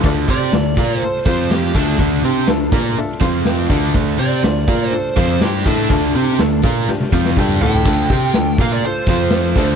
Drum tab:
CC |----------------|----------------|----------------|----------------|
HH |o-o-o-o-o-o-o-o-|o-o-o-o-o-o-o-o-|o-o-o-o-o-o-o-o-|o-o-o-o---------|
SD |----o-------o---|----o-------o---|----o-------o--o|----o---o--o----|
T1 |----------------|----------------|----------------|---------o------|
T2 |----------------|----------------|----------------|-------------o--|
FT |----------------|----------------|----------------|--------------oo|
BD |o-o---o---o---o-|o-----o---o---o-|o-----o---o---o-|o-----o---o-o---|

CC |x---------------|
HH |o-o-o-o-o-o-o-o-|
SD |----o-------o---|
T1 |----------------|
T2 |----------------|
FT |----------------|
BD |o-o---o---o---o-|